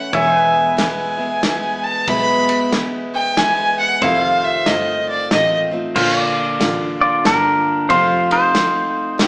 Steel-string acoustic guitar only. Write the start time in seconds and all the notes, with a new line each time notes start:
Already playing: E3 A3 C#4 E4
0.13 E2 B2 E3 G#3 B3 E4
0.77 E3 G#3 B3 E4
1.17 E3 G#3 B3 E4
1.42 E3 G#3 B3 E4
2.07 E2 B2 E3 G#3 B3 E4
2.72 E3 G#3 B3 E4
3.36 E3 G#3 B3 E4
4.01 F2 C3 D#3 A3 C4 F4
4.66 D#3 A3 C4 F4
5.31 D#3 A3 C4 F4
5.71 D#3 A3 C4 F4
5.95 A#2 D3 A#3 D4 F4
6.59 D3 A#3 D4 F4
7.24 D3 A#3 D4 F4
7.89 F2 C3 F3 A3 C4 F4
8.54 F3 A3 C4 F4
9.18 F3 A3 C4 F4